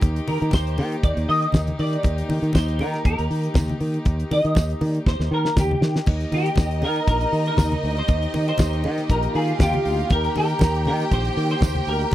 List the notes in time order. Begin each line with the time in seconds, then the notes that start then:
Already playing: D#3 A#3 D#4 G4
0.01 D#2, kick, closed hi-hat, muted conga
0.16 closed hi-hat
0.28 D#3 A#4, open hi-hat, muted conga
0.42 D#3, closed hi-hat
0.51 D#2 C5, kick, snare, tambourine, high conga
0.67 closed hi-hat
0.78 D#3, open hi-hat, muted conga
0.92 closed hi-hat
1.03 D#2 D5, kick, closed hi-hat
1.17 D#2, closed hi-hat
1.29 D#3 D#5, open hi-hat
1.42 closed hi-hat
1.52 D#2, kick, snare, tambourine, high conga
1.67 closed hi-hat, high conga
1.79 D#3 D5, open hi-hat
1.93 closed hi-hat
2.03 D#2, kick, closed hi-hat, muted conga
2.18 closed hi-hat
2.29 D#3, open hi-hat, muted conga
2.42 D#3, closed hi-hat
2.53 D#2 C5, kick, snare, tambourine, high conga
2.68 closed hi-hat
2.79 D#3 A#4, open hi-hat, muted conga
2.94 snare, closed hi-hat
3.05 D#2 A#4, kick, closed hi-hat, muted conga
3.19 D#2, closed hi-hat
3.30 D#3, open hi-hat
3.43 closed hi-hat
3.54 D#2, kick, snare, tambourine, high conga
3.68 closed hi-hat, high conga
3.80 D#3, open hi-hat
3.94 closed hi-hat
4.05 D#2, kick, closed hi-hat, muted conga
4.20 closed hi-hat
4.31 D#3 D#5, open hi-hat, muted conga
4.45 D#3, closed hi-hat
4.55 D#2, kick, snare, tambourine, high conga
4.70 closed hi-hat
4.81 D#3, open hi-hat, muted conga
4.86 D5
4.95 closed hi-hat
5.06 D#2 C5, kick, snare, muted conga
5.19 D#2, snare
5.31 D#3 A#4
5.45 snare
5.56 D#2 G4, kick, snare, tambourine, high conga
5.71 high conga
5.81 D#3, snare
5.96 snare
6.06 D#2 D#3 A#3 D#4 G4 D#5, kick, crash, muted conga
6.20 closed hi-hat
6.32 D#3 G4, open hi-hat, muted conga
6.46 closed hi-hat
6.56 D#2, kick, snare, tambourine, high conga
6.71 closed hi-hat
6.82 D#3 A#4, open hi-hat, muted conga
6.96 closed hi-hat
7.07 A#1 A#4, kick, closed hi-hat, muted conga
7.21 closed hi-hat
7.32 D#3, open hi-hat
7.46 A#4, closed hi-hat
7.57 D#2, kick, snare, tambourine, high conga
7.71 closed hi-hat, high conga
7.83 D2, open hi-hat
7.97 C5, closed hi-hat
8.08 D#2, kick, closed hi-hat, muted conga
8.22 closed hi-hat
8.34 D#3, open hi-hat, muted conga
8.48 C5, closed hi-hat
8.58 D#2, kick, snare, tambourine, high conga
8.73 closed hi-hat
8.84 D#3, open hi-hat, muted conga
8.98 snare, closed hi-hat
9.10 A#1 A#4, kick, closed hi-hat, muted conga
9.23 closed hi-hat
9.35 D#3 F4 G#4 F5, open hi-hat
9.48 closed hi-hat
9.59 D#2 G4, kick, snare, tambourine, high conga
9.73 closed hi-hat, high conga
9.85 D2, open hi-hat
9.99 closed hi-hat
10.10 D#2 G4 A#4 G5, kick, closed hi-hat, muted conga
10.24 closed hi-hat
10.36 D#3 A#4, open hi-hat, muted conga
10.50 closed hi-hat
10.59 D#2, kick, snare, tambourine, high conga
10.75 closed hi-hat
10.85 D#3 A#4, open hi-hat, muted conga
11.00 snare, closed hi-hat
11.11 A#1 C5, kick, closed hi-hat, muted conga
11.25 closed hi-hat
11.37 D#3, open hi-hat
11.50 C5, closed hi-hat
11.61 D#2, kick, snare, tambourine, high conga
11.75 closed hi-hat, high conga
11.87 D2 A#4, open hi-hat
12.01 closed hi-hat
12.11 muted conga